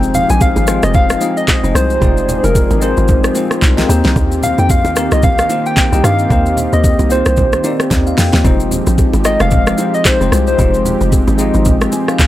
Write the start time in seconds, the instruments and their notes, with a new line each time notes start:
Already playing: log drum bass F1, analog synth pad F3 C4 D#4 G4 G#4, tine electric piano G#3 C4 D#4 F4 C5
0.03 shaker
0.14 soft synth lead F5, low conga, shaker
0.29 log drum bass A#1, soft synth lead G#5, low bongo, shaker
0.41 soft synth lead F5, kick, high bongo, shaker
0.56 log drum bass G#1, high bongo, low bongo, shaker
0.66 tine electric piano G#3 C4 D#4 F4 C5, cross-stick, shaker
0.83 log drum bass F1, soft synth lead D#5, cross-stick, shaker
0.94 soft synth lead F5, kick, low conga, shaker
1.10 cross-stick, shaker
1.20 tine electric piano G#3 C4 D#4 F4 D#5, low bongo, shaker
1.37 soft synth lead D#5, shaker
1.48 kick, clap, high bongo, shaker
1.62 log drum bass F1, tine electric piano G#3 C4 D#4 F4 C5, shaker
1.75 log drum bass C2, soft synth lead C5, cross-stick, shaker
1.90 shaker
2.00 log drum bass F1, tine electric piano G#3 C4 D#4 F4 D5, kick, low conga, shaker
2.17 shaker
2.29 low conga, shaker
2.44 log drum bass F1, soft synth lead A#4, low bongo, shaker
2.55 kick, high bongo, shaker
2.71 log drum bass G#1, high bongo, low bongo, shaker
2.80 tine electric piano G#3 C4 D#4 F4 A#4, soft synth lead C5, shaker
2.97 log drum bass G#1, shaker
3.08 kick, low conga, shaker
3.24 cross-stick, shaker
3.34 tine electric piano G#3 C4 D#4 F4 C5, low bongo, shaker
3.51 cross-stick, shaker
3.62 log drum bass C2, kick, clap, high bongo, shaker
3.76 tine electric piano G#3 C4 D#4 F4 A#4, snare, shaker
3.88 log drum bass D#2, analog synth pad D#3 A#3 F4, tine electric piano A#3 C4 D#4 G4 C5, shaker
4.04 log drum bass C2, snare, shaker
4.16 log drum bass D#2, kick, low conga, shaker
4.32 shaker
4.43 soft synth lead F5, low conga, shaker
4.58 log drum bass F2, soft synth lead G5, low bongo, shaker
4.70 soft synth lead F5, kick, high bongo, shaker
4.85 log drum bass D#2, high bongo, low bongo, shaker
4.95 tine electric piano A#3 C4 D#4 G4 A#4, cross-stick, shaker
5.11 log drum bass C2, soft synth lead D#5, cross-stick, shaker
5.22 soft synth lead F5, kick, low conga, shaker
5.38 cross-stick, shaker
5.49 tine electric piano A#3 C4 D#4 G4 C5, low bongo, shaker
5.66 soft synth lead G5, shaker
5.77 kick, clap, high bongo, shaker
5.91 log drum bass C2, tine electric piano A#3 C4 D#4 G4 D#5, shaker
6.04 log drum bass G2, soft synth lead F5, cross-stick, shaker
6.19 shaker
6.29 log drum bass D#2, tine electric piano A#3 C4 D#4 G4 C5, kick, low conga, shaker
6.46 shaker
6.57 low conga, shaker
6.73 log drum bass D#2, soft synth lead D#5, shaker
6.84 kick, high bongo, shaker
6.99 log drum bass C2, high bongo, low bongo, shaker
7.09 tine electric piano A#3 C4 D#4 G4 C5, soft synth lead C5, shaker
7.26 log drum bass C2, cross-stick, shaker
7.37 kick, low conga, shaker
7.53 cross-stick, shaker
7.63 tine electric piano A#3 C4 D#4 G4 D5, low bongo, shaker
7.80 cross-stick, shaker
7.91 log drum bass D#2, tine electric piano D#5, kick, snare, high bongo, shaker
8.07 tine electric piano F5, shaker
8.18 log drum bass F2, tine electric piano G5, snare, open hi-hat, high bongo, shaker
8.33 log drum bass D#2, tine electric piano D#5, snare, shaker
8.43 log drum bass F1, analog synth pad F3 G#3 D#4, tine electric piano G3 C4 D#4 F4 C5, kick, low conga, shaker
8.50 tine electric piano G#3
8.60 shaker
8.71 low conga, shaker
8.87 log drum bass A#1, low bongo, shaker
8.98 kick, high bongo, shaker
9.13 log drum bass G#1, high bongo, low bongo, shaker
9.24 tine electric piano G#3 C4 D#4 F4 D#5, soft synth lead D#5, cross-stick, shaker
9.40 log drum bass F1, soft synth lead F5, cross-stick, shaker
9.51 kick, low conga, shaker
9.67 cross-stick, shaker
9.77 tine electric piano G#3 C4 D#4 F4 C5, low bongo, shaker
9.94 soft synth lead D#5, shaker
10.05 soft synth lead C5, kick, clap, high bongo, shaker
10.20 log drum bass F1, tine electric piano G#3 C4 D#4 F4 C5, shaker
10.32 log drum bass C2, cross-stick, shaker
10.47 soft synth lead C5, shaker
10.58 log drum bass F1, tine electric piano G#3 C4 D#4 F4 G4, kick, low conga, shaker
10.74 shaker
10.85 low conga, shaker
11.01 log drum bass F1, low bongo, shaker
11.12 kick, high bongo, shaker
11.28 log drum bass G#1, high bongo, low bongo, shaker
11.38 tine electric piano G#3 C4 D#4 F4 D#5, shaker
11.54 log drum bass G#1, shaker
11.65 kick, low conga, shaker
11.81 cross-stick, shaker
11.92 tine electric piano G#5, low bongo, shaker
12.08 tine electric piano F5, cross-stick, shaker
12.19 log drum bass C2, kick, clap, high bongo, shaker